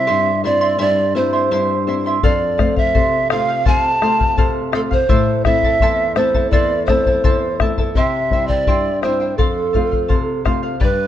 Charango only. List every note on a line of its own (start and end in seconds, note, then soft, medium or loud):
0.07 0.43 E4 medium
0.07 0.44 G4 medium
0.07 0.43 C5 medium
0.07 0.44 E5 medium
0.07 0.44 C6 medium
0.44 0.61 E4 medium
0.44 0.62 C5 medium
0.44 0.61 E5 medium
0.44 0.60 C6 medium
0.61 0.77 E4 soft
0.61 0.78 E5 soft
0.61 0.78 C6 medium
0.78 1.14 E4 medium
0.78 1.15 G4 medium
0.78 1.14 C5 medium
0.78 1.14 E5 medium
0.78 1.15 C6 medium
1.15 1.33 E4 medium
1.15 1.33 C5 medium
1.15 1.32 E5 medium
1.15 1.32 C6 medium
1.33 1.50 E4 soft
1.33 1.51 E5 soft
1.33 1.51 C6 soft
1.51 1.87 E4 medium
1.51 1.87 G4 medium
1.51 1.86 C5 medium
1.51 1.87 E5 medium
1.51 1.87 C6 medium
1.87 2.06 E4 medium
1.87 2.05 C5 medium
1.87 2.06 E5 medium
1.87 2.05 C6 medium
2.06 2.23 E4 soft
2.06 2.24 E5 soft
2.06 2.24 C6 medium
2.23 2.56 A4 medium
2.23 2.58 C5 medium
2.23 2.58 F5 medium
2.58 2.76 A4 medium
2.58 2.77 C5 medium
2.58 2.75 F5 medium
2.76 2.94 C5 soft
2.76 2.94 F5 soft
2.94 3.29 A4 medium
2.94 3.30 C5 medium
3.30 3.48 A4 medium
3.30 3.48 C5 medium
3.30 3.47 F5 medium
3.48 3.65 C5 soft
3.48 3.65 F5 medium
3.65 4.01 A4 medium
3.65 4.02 C5 medium
3.65 4.02 F5 medium
4.02 4.20 A4 medium
4.02 4.20 C5 medium
4.02 4.18 F5 medium
4.20 4.37 C5 soft
4.20 4.37 F5 soft
4.37 4.71 A4 medium
4.37 4.72 C5 medium
4.37 4.72 F5 medium
4.72 4.91 A4 medium
4.72 4.91 C5 medium
4.72 4.90 F5 medium
4.91 5.08 C5 soft
4.91 5.09 F5 medium
5.09 5.45 E4 medium
5.09 5.45 A4 medium
5.09 5.45 C5 medium
5.09 5.44 E5 medium
5.09 5.46 A5 medium
5.46 5.63 E4 medium
5.46 5.64 A4 medium
5.46 5.63 E5 medium
5.46 5.63 A5 medium
5.64 5.81 E4 soft
5.64 5.82 A4 soft
5.64 5.82 A5 medium
5.82 6.16 E4 medium
5.82 6.16 A4 medium
5.82 6.17 C5 medium
5.82 6.15 E5 medium
5.82 6.17 A5 medium
6.17 6.34 E4 medium
6.17 6.34 A4 medium
6.17 6.35 E5 medium
6.17 6.33 A5 medium
6.34 6.52 E4 medium
6.34 6.52 A4 medium
6.34 6.52 A5 medium
6.52 6.87 E4 medium
6.52 6.88 A4 medium
6.52 6.88 C5 medium
6.52 6.86 E5 medium
6.52 6.88 A5 medium
6.88 7.06 E4 medium
6.88 7.06 A4 medium
6.88 7.06 E5 soft
6.88 7.06 A5 medium
7.07 7.23 E4 soft
7.07 7.23 A4 soft
7.07 7.24 A5 soft
7.24 7.60 E4 medium
7.24 7.60 A4 medium
7.24 7.60 C5 medium
7.24 7.59 E5 medium
7.24 7.60 A5 medium
7.60 7.78 E4 medium
7.60 7.78 A4 medium
7.60 7.77 E5 medium
7.60 7.77 A5 medium
7.78 7.96 E4 soft
7.78 7.96 A4 medium
7.78 7.96 A5 medium
7.97 8.32 E4 medium
7.97 8.32 G4 medium
7.97 8.32 C5 medium
7.97 8.31 E5 medium
7.97 8.32 G5 medium
8.33 8.50 E4 soft
8.33 8.50 C5 medium
8.33 8.50 E5 medium
8.33 8.49 G5 medium
8.50 8.66 E4 soft
8.50 8.67 C5 soft
8.50 8.67 G5 soft
8.67 9.02 E4 medium
8.67 9.03 G4 medium
8.67 9.03 C5 medium
8.67 9.02 E5 medium
8.67 9.03 G5 medium
9.03 9.20 E4 medium
9.03 9.20 C5 medium
9.03 9.21 E5 medium
9.03 9.19 G5 medium
9.20 9.39 E4 soft
9.20 9.37 C5 soft
9.20 9.37 G5 medium
9.38 9.72 A4 medium
9.38 9.73 C5 medium
9.38 9.74 F5 medium
9.73 9.91 A4 medium
9.73 9.92 C5 medium
9.73 9.90 F5 medium
9.91 10.08 C5 soft
9.91 10.08 F5 soft
10.08 10.44 A4 medium
10.08 10.44 C5 medium
10.08 10.45 F5 medium
10.45 10.63 A4 medium
10.45 10.62 C5 medium
10.45 10.62 F5 medium
10.63 10.79 C5 soft
10.63 10.80 F5 medium
10.80 11.07 G4 medium
10.80 11.07 B4 medium
10.80 11.07 D5 medium
10.80 11.07 G5 medium
10.80 11.07 B5 medium